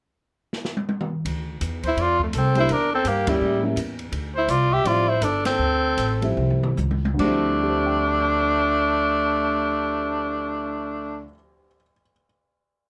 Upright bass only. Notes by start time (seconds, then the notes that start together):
1.25 D2
1.61 E2
1.97 F2
2.34 C2
2.69 E2
3.05 G2
3.41 A2
3.76 E2
4.12 D2
4.48 C2
4.84 A1
5.21 G1
5.59 D2
5.97 A1
6.37 C2
6.77 C#2
7.19 D2